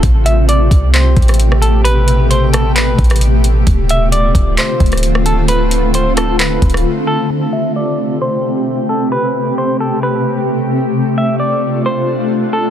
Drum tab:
HH |x-----------x-----------x-----------x-----------x-----------x--x--x--x--x-----------x-----------|x-----------x-----------x-----------x-----------x-----------x--x--x--x--x-----------x-----------|x-----------x-----------x-----------x-----------x-----------x--x--x--x--x-----------x-----------|x-----------x-----------x-----------x-----------x-----------x---x---x---------------------------|
CP |------------------------------------------------x-----------------------------------------------|------------------------------------------------x-----------------------------------------------|------------------------------------------------x-----------------------------------------------|------------------------------------------------x-----------------------------------------------|
SD |------------------------------------------------------------------r-----------r-----------------|------------------------------------r-----------------------------r-----------------------------|------------------------------------------------------------------r-----------r-----------------|------------------------------------r-----------------------------r-----------------------------|
BD |o-----------------------------------o-----------------------o-----------------------------------|------------------------------------------------------------o-----------------------------------|o-----------------------------------o-----------------------o-----------------------------------|------------------------------------------------------------o-----------------------------------|

HH |------------------------------------------------------------------------------------------------|------------------------------------------------------------------------------------------------|------------------------------------------------------------------------------------------------|
CP |------------------------------------------------------------------------------------------------|------------------------------------------------------------------------------------------------|------------------------------------------------------------------------------------------------|
SD |------------------------------------------------------------------------------------------------|------------------------------------------------------------------------------------------------|------------------------------------------------------------------------------------------------|
BD |------------------------------------------------------------------------------------------------|------------------------------------------------------------------------------------------------|------------------------------------------------------------------------------------------------|